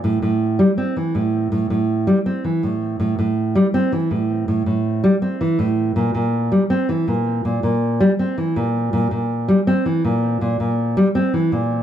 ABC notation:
X:1
M:4/4
L:1/16
Q:1/4=81
K:Bblyd
V:1 name="Nylon-string guitar" clef=bass
A,, A,,2 G, C E, A,,2 A,, A,,2 G, C E, A,,2 | A,, A,,2 G, C E, A,,2 A,, A,,2 G, C E, A,,2 | B,, B,,2 G, C E, B,,2 B,, B,,2 G, C E, B,,2 | B,, B,,2 G, C E, B,,2 B,, B,,2 G, C E, B,,2 |]